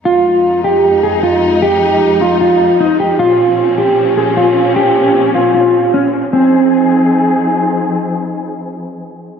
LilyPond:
<<
  \new Staff \with { instrumentName = "Clean electric guitar" } { \time 4/4 \key f \minor \tempo 4 = 153 f'4. g'4 aes'8 f'4 | g'4. f'8 f'4 ees'8 g'8 | f'4. g'4 aes'8 f'4 | g'4. f'8 f'4 des'8 r8 |
c'2. r4 | r1 | }
  \new Staff \with { instrumentName = "String section" } { \time 4/4 \key f \minor << { <f, aes ees'>1~ | <f, aes ees'>1 | <bes, c' des'>1~ | <bes, c' des'>1 |
<f c' ees' aes'>1~ | <f c' ees' aes'>1 | } \\ { f1~ | f1~ | f1~ | f1 |
r1 | r1 | } >> }
>>